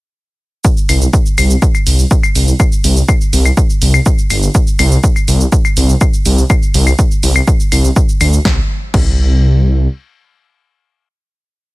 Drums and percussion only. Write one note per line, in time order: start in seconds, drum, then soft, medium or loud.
0.65 kick loud
0.65 shaker medium
0.77 shaker soft
0.89 open hi-hat loud
0.89 claves medium
0.89 shaker medium
1.02 shaker soft
1.13 kick loud
1.13 shaker medium
1.26 shaker soft
1.38 open hi-hat loud
1.38 claves medium
1.38 shaker medium
1.50 shaker soft
1.62 kick loud
1.62 shaker medium
1.75 claves medium
1.75 shaker soft
1.87 open hi-hat loud
1.87 shaker medium
1.99 shaker soft
2.11 kick loud
2.11 shaker medium
2.23 claves medium
2.23 shaker soft
2.35 open hi-hat medium
2.35 shaker medium
2.48 shaker soft
2.60 kick loud
2.60 claves medium
2.60 shaker medium
2.72 shaker soft
2.84 open hi-hat loud
2.84 shaker medium
2.97 shaker soft
3.08 kick loud
3.08 claves medium
3.08 shaker medium
3.21 shaker soft
3.33 open hi-hat loud
3.33 shaker medium
3.46 claves medium
3.46 shaker soft
3.57 kick loud
3.57 shaker medium
3.70 shaker soft
3.82 open hi-hat loud
3.82 shaker medium
3.94 claves medium
3.94 shaker soft
4.06 kick loud
4.06 shaker medium
4.18 shaker soft
4.30 open hi-hat medium
4.30 claves medium
4.30 shaker medium
4.43 shaker soft
4.55 kick loud
4.55 shaker medium
4.67 shaker soft
4.79 open hi-hat loud
4.79 claves medium
4.79 shaker medium
4.92 shaker soft
5.04 kick loud
5.04 shaker medium
5.16 claves soft
5.16 shaker soft
5.28 open hi-hat loud
5.28 shaker medium
5.40 shaker soft
5.52 kick loud
5.52 shaker medium
5.65 claves medium
5.65 shaker soft
5.77 open hi-hat loud
5.77 shaker medium
5.89 shaker soft
6.01 kick loud
6.01 claves soft
6.01 shaker medium
6.14 shaker soft
6.26 open hi-hat loud
6.26 shaker medium
6.38 shaker soft
6.50 kick loud
6.50 claves medium
6.50 shaker medium
6.62 shaker soft
6.74 open hi-hat loud
6.74 shaker medium
6.87 claves soft
6.87 shaker soft
6.99 kick loud
6.99 shaker medium
7.11 shaker soft
7.23 open hi-hat loud
7.23 shaker medium
7.36 claves medium
7.36 shaker soft
7.47 kick loud
7.47 shaker medium
7.60 shaker soft
7.72 open hi-hat loud
7.72 claves soft
7.72 shaker medium
7.84 shaker soft
7.96 kick loud
7.96 shaker medium
8.09 shaker soft
8.21 open hi-hat medium
8.21 claves medium
8.21 shaker medium
8.33 shaker soft
8.45 kick loud
8.45 snare medium
8.94 kick loud
8.94 crash medium